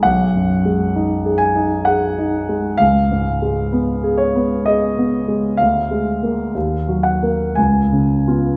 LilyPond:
<<
  \new Staff \with { instrumentName = "Grand piano" } { \time 3/4 \key cis \mixolydian \tempo 4 = 64 fis''4. gis''8 fis''4 | eis''4. cis''8 dis''4 | eis''4. fis''8 gis''4 | }
  \new Staff \with { instrumentName = "Grand piano" } { \time 3/4 \key cis \mixolydian \tuplet 3/2 { b,,8 fis,8 gis8 dis'8 gis'8 dis'8 gis'8 dis'8 gis8 } | \tuplet 3/2 { cis,8 gis,8 gis8 b8 gis'8 b8 gis'8 b8 gis8 } | \tuplet 3/2 { d,8 gis8 <ais ais'>8 dis,8 fis8 <ais ais'>8 cis,8 cis8 <b eis'>8 } | }
>>